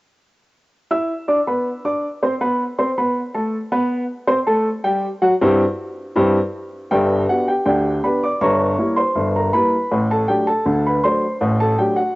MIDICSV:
0, 0, Header, 1, 2, 480
1, 0, Start_track
1, 0, Tempo, 750000
1, 581, Time_signature, 2, 2, 24, 8
1, 7778, End_track
2, 0, Start_track
2, 0, Title_t, "Upright piano"
2, 0, Program_c, 0, 0
2, 580, Note_on_c, 0, 64, 61
2, 580, Note_on_c, 0, 76, 65
2, 583, Note_on_c, 0, 88, 69
2, 713, Note_off_c, 0, 64, 0
2, 713, Note_off_c, 0, 76, 0
2, 715, Note_off_c, 0, 88, 0
2, 819, Note_on_c, 0, 74, 65
2, 821, Note_on_c, 0, 86, 56
2, 822, Note_on_c, 0, 62, 67
2, 886, Note_off_c, 0, 74, 0
2, 888, Note_off_c, 0, 62, 0
2, 888, Note_off_c, 0, 86, 0
2, 943, Note_on_c, 0, 71, 61
2, 943, Note_on_c, 0, 83, 59
2, 944, Note_on_c, 0, 59, 55
2, 1075, Note_off_c, 0, 71, 0
2, 1075, Note_off_c, 0, 83, 0
2, 1076, Note_off_c, 0, 59, 0
2, 1184, Note_on_c, 0, 62, 58
2, 1184, Note_on_c, 0, 86, 63
2, 1185, Note_on_c, 0, 74, 57
2, 1315, Note_off_c, 0, 62, 0
2, 1316, Note_off_c, 0, 74, 0
2, 1316, Note_off_c, 0, 86, 0
2, 1425, Note_on_c, 0, 72, 66
2, 1427, Note_on_c, 0, 60, 61
2, 1427, Note_on_c, 0, 84, 65
2, 1490, Note_off_c, 0, 72, 0
2, 1491, Note_off_c, 0, 60, 0
2, 1492, Note_off_c, 0, 84, 0
2, 1542, Note_on_c, 0, 59, 71
2, 1543, Note_on_c, 0, 71, 78
2, 1544, Note_on_c, 0, 83, 72
2, 1673, Note_off_c, 0, 59, 0
2, 1675, Note_off_c, 0, 71, 0
2, 1675, Note_off_c, 0, 83, 0
2, 1783, Note_on_c, 0, 84, 64
2, 1784, Note_on_c, 0, 72, 68
2, 1785, Note_on_c, 0, 60, 62
2, 1848, Note_off_c, 0, 84, 0
2, 1849, Note_off_c, 0, 72, 0
2, 1850, Note_off_c, 0, 60, 0
2, 1907, Note_on_c, 0, 59, 62
2, 1907, Note_on_c, 0, 71, 65
2, 1907, Note_on_c, 0, 83, 67
2, 2036, Note_off_c, 0, 59, 0
2, 2036, Note_off_c, 0, 71, 0
2, 2036, Note_off_c, 0, 83, 0
2, 2141, Note_on_c, 0, 81, 66
2, 2142, Note_on_c, 0, 69, 65
2, 2144, Note_on_c, 0, 57, 63
2, 2271, Note_off_c, 0, 81, 0
2, 2272, Note_off_c, 0, 69, 0
2, 2273, Note_off_c, 0, 57, 0
2, 2380, Note_on_c, 0, 59, 87
2, 2381, Note_on_c, 0, 83, 70
2, 2382, Note_on_c, 0, 71, 85
2, 2576, Note_off_c, 0, 59, 0
2, 2576, Note_off_c, 0, 83, 0
2, 2577, Note_off_c, 0, 71, 0
2, 2736, Note_on_c, 0, 60, 69
2, 2736, Note_on_c, 0, 72, 72
2, 2736, Note_on_c, 0, 84, 78
2, 2801, Note_off_c, 0, 60, 0
2, 2801, Note_off_c, 0, 72, 0
2, 2801, Note_off_c, 0, 84, 0
2, 2860, Note_on_c, 0, 81, 68
2, 2861, Note_on_c, 0, 69, 80
2, 2862, Note_on_c, 0, 57, 69
2, 2990, Note_off_c, 0, 81, 0
2, 2991, Note_off_c, 0, 57, 0
2, 2991, Note_off_c, 0, 69, 0
2, 3098, Note_on_c, 0, 79, 79
2, 3100, Note_on_c, 0, 55, 84
2, 3101, Note_on_c, 0, 67, 67
2, 3229, Note_off_c, 0, 79, 0
2, 3230, Note_off_c, 0, 55, 0
2, 3231, Note_off_c, 0, 67, 0
2, 3339, Note_on_c, 0, 66, 75
2, 3340, Note_on_c, 0, 54, 83
2, 3340, Note_on_c, 0, 78, 82
2, 3404, Note_off_c, 0, 54, 0
2, 3404, Note_off_c, 0, 66, 0
2, 3405, Note_off_c, 0, 78, 0
2, 3465, Note_on_c, 0, 60, 83
2, 3465, Note_on_c, 0, 67, 89
2, 3466, Note_on_c, 0, 43, 95
2, 3468, Note_on_c, 0, 64, 83
2, 3594, Note_off_c, 0, 67, 0
2, 3595, Note_off_c, 0, 43, 0
2, 3595, Note_off_c, 0, 60, 0
2, 3596, Note_off_c, 0, 64, 0
2, 3941, Note_on_c, 0, 64, 73
2, 3942, Note_on_c, 0, 43, 94
2, 3942, Note_on_c, 0, 67, 84
2, 3943, Note_on_c, 0, 60, 72
2, 4072, Note_off_c, 0, 64, 0
2, 4073, Note_off_c, 0, 43, 0
2, 4073, Note_off_c, 0, 67, 0
2, 4074, Note_off_c, 0, 60, 0
2, 4422, Note_on_c, 0, 79, 82
2, 4424, Note_on_c, 0, 31, 73
2, 4424, Note_on_c, 0, 43, 82
2, 4430, Note_on_c, 0, 67, 66
2, 4432, Note_on_c, 0, 74, 64
2, 4613, Note_off_c, 0, 79, 0
2, 4626, Note_off_c, 0, 31, 0
2, 4626, Note_off_c, 0, 43, 0
2, 4648, Note_off_c, 0, 67, 0
2, 4649, Note_off_c, 0, 74, 0
2, 4667, Note_on_c, 0, 78, 79
2, 4668, Note_on_c, 0, 59, 46
2, 4668, Note_on_c, 0, 62, 40
2, 4673, Note_on_c, 0, 67, 56
2, 4676, Note_on_c, 0, 66, 53
2, 4779, Note_off_c, 0, 66, 0
2, 4783, Note_off_c, 0, 78, 0
2, 4787, Note_off_c, 0, 67, 0
2, 4787, Note_on_c, 0, 79, 70
2, 4796, Note_on_c, 0, 67, 49
2, 4797, Note_off_c, 0, 59, 0
2, 4798, Note_off_c, 0, 62, 0
2, 4890, Note_off_c, 0, 79, 0
2, 4898, Note_off_c, 0, 67, 0
2, 4899, Note_on_c, 0, 79, 74
2, 4900, Note_on_c, 0, 50, 72
2, 4901, Note_on_c, 0, 38, 67
2, 4907, Note_on_c, 0, 67, 58
2, 4908, Note_on_c, 0, 74, 54
2, 5104, Note_off_c, 0, 38, 0
2, 5104, Note_off_c, 0, 50, 0
2, 5126, Note_off_c, 0, 67, 0
2, 5127, Note_off_c, 0, 74, 0
2, 5127, Note_off_c, 0, 79, 0
2, 5143, Note_on_c, 0, 59, 42
2, 5144, Note_on_c, 0, 62, 49
2, 5145, Note_on_c, 0, 83, 74
2, 5148, Note_on_c, 0, 67, 49
2, 5153, Note_on_c, 0, 71, 59
2, 5258, Note_off_c, 0, 71, 0
2, 5262, Note_off_c, 0, 83, 0
2, 5270, Note_on_c, 0, 86, 70
2, 5274, Note_off_c, 0, 59, 0
2, 5275, Note_off_c, 0, 62, 0
2, 5277, Note_on_c, 0, 74, 57
2, 5278, Note_off_c, 0, 67, 0
2, 5380, Note_off_c, 0, 74, 0
2, 5383, Note_on_c, 0, 31, 74
2, 5383, Note_on_c, 0, 43, 79
2, 5383, Note_on_c, 0, 85, 82
2, 5384, Note_off_c, 0, 86, 0
2, 5388, Note_on_c, 0, 73, 69
2, 5388, Note_on_c, 0, 82, 71
2, 5585, Note_off_c, 0, 31, 0
2, 5585, Note_off_c, 0, 43, 0
2, 5618, Note_on_c, 0, 55, 45
2, 5621, Note_on_c, 0, 58, 50
2, 5625, Note_on_c, 0, 64, 52
2, 5670, Note_off_c, 0, 85, 0
2, 5719, Note_off_c, 0, 73, 0
2, 5719, Note_off_c, 0, 82, 0
2, 5736, Note_on_c, 0, 84, 74
2, 5744, Note_on_c, 0, 72, 52
2, 5750, Note_off_c, 0, 55, 0
2, 5753, Note_off_c, 0, 58, 0
2, 5755, Note_off_c, 0, 64, 0
2, 5858, Note_on_c, 0, 43, 65
2, 5859, Note_on_c, 0, 31, 67
2, 5929, Note_off_c, 0, 84, 0
2, 5965, Note_off_c, 0, 72, 0
2, 5990, Note_on_c, 0, 82, 72
2, 5996, Note_on_c, 0, 70, 46
2, 6062, Note_off_c, 0, 43, 0
2, 6063, Note_off_c, 0, 31, 0
2, 6099, Note_off_c, 0, 70, 0
2, 6100, Note_on_c, 0, 55, 44
2, 6100, Note_on_c, 0, 83, 86
2, 6101, Note_on_c, 0, 58, 50
2, 6104, Note_off_c, 0, 82, 0
2, 6105, Note_on_c, 0, 64, 48
2, 6107, Note_on_c, 0, 71, 62
2, 6232, Note_off_c, 0, 55, 0
2, 6232, Note_off_c, 0, 58, 0
2, 6236, Note_off_c, 0, 64, 0
2, 6345, Note_on_c, 0, 33, 72
2, 6345, Note_on_c, 0, 45, 83
2, 6388, Note_off_c, 0, 83, 0
2, 6438, Note_off_c, 0, 71, 0
2, 6471, Note_on_c, 0, 81, 77
2, 6478, Note_on_c, 0, 69, 57
2, 6546, Note_off_c, 0, 45, 0
2, 6547, Note_off_c, 0, 33, 0
2, 6579, Note_on_c, 0, 79, 72
2, 6581, Note_off_c, 0, 69, 0
2, 6582, Note_on_c, 0, 54, 43
2, 6584, Note_on_c, 0, 57, 46
2, 6585, Note_off_c, 0, 81, 0
2, 6588, Note_on_c, 0, 62, 51
2, 6589, Note_on_c, 0, 67, 57
2, 6696, Note_off_c, 0, 67, 0
2, 6699, Note_off_c, 0, 79, 0
2, 6701, Note_on_c, 0, 81, 73
2, 6707, Note_on_c, 0, 69, 54
2, 6713, Note_off_c, 0, 54, 0
2, 6715, Note_off_c, 0, 57, 0
2, 6717, Note_off_c, 0, 62, 0
2, 6820, Note_on_c, 0, 38, 68
2, 6822, Note_on_c, 0, 50, 72
2, 6926, Note_off_c, 0, 69, 0
2, 6928, Note_off_c, 0, 81, 0
2, 6953, Note_on_c, 0, 83, 74
2, 6960, Note_on_c, 0, 71, 53
2, 7023, Note_off_c, 0, 38, 0
2, 7024, Note_off_c, 0, 50, 0
2, 7062, Note_off_c, 0, 71, 0
2, 7063, Note_on_c, 0, 54, 45
2, 7063, Note_on_c, 0, 84, 77
2, 7065, Note_off_c, 0, 83, 0
2, 7068, Note_on_c, 0, 57, 45
2, 7069, Note_on_c, 0, 62, 51
2, 7073, Note_on_c, 0, 72, 60
2, 7194, Note_off_c, 0, 54, 0
2, 7197, Note_off_c, 0, 57, 0
2, 7198, Note_off_c, 0, 62, 0
2, 7301, Note_on_c, 0, 45, 85
2, 7303, Note_on_c, 0, 33, 74
2, 7400, Note_off_c, 0, 72, 0
2, 7402, Note_off_c, 0, 84, 0
2, 7426, Note_on_c, 0, 81, 80
2, 7434, Note_on_c, 0, 69, 63
2, 7503, Note_off_c, 0, 45, 0
2, 7504, Note_off_c, 0, 33, 0
2, 7537, Note_off_c, 0, 69, 0
2, 7540, Note_on_c, 0, 54, 43
2, 7541, Note_off_c, 0, 81, 0
2, 7541, Note_on_c, 0, 57, 41
2, 7542, Note_on_c, 0, 79, 73
2, 7547, Note_on_c, 0, 62, 47
2, 7548, Note_on_c, 0, 67, 59
2, 7654, Note_off_c, 0, 67, 0
2, 7655, Note_on_c, 0, 78, 73
2, 7659, Note_off_c, 0, 79, 0
2, 7664, Note_on_c, 0, 66, 53
2, 7671, Note_off_c, 0, 54, 0
2, 7672, Note_off_c, 0, 57, 0
2, 7676, Note_off_c, 0, 62, 0
2, 7778, Note_off_c, 0, 66, 0
2, 7778, Note_off_c, 0, 78, 0
2, 7778, End_track
0, 0, End_of_file